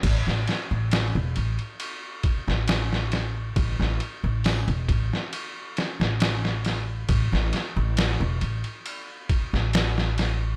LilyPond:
<<
  \new Staff \with { instrumentName = "Upright bass" } { \clef bass \time 4/4 \key c \major \tempo 4 = 68 a,,16 a,,16 r16 a,,8 e,,16 a,,16 r4 a,,4~ a,,16 | a,,16 a,,16 r16 a,,8 e,,16 a,,16 r4 a,,4~ a,,16 | a,,16 a,,16 r16 a,,8 e,,16 a,,16 r4 a,,4~ a,,16 | }
  \new DrumStaff \with { instrumentName = "Drums" } \drummode { \time 4/4 <cymc bd cymr>16 sn16 <cymr sn>8 <cymr sn>8 cymr16 cymr16 cymr8 <bd cymr>16 sn16 <cymr sn>16 sn16 <cymr sn>8 | <bd cymr>16 sn16 cymr8 <hho sn>16 cymr16 <bd cymr>16 sn16 cymr8 <cymr sn>16 sn16 <cymr sn>16 sn16 <cymr sn>8 | <bd cymr>16 sn16 <cymr sn>8 <cymr sn>8 cymr16 cymr16 cymr8 <bd cymr>16 sn16 <cymr sn>16 sn16 <cymr sn>8 | }
>>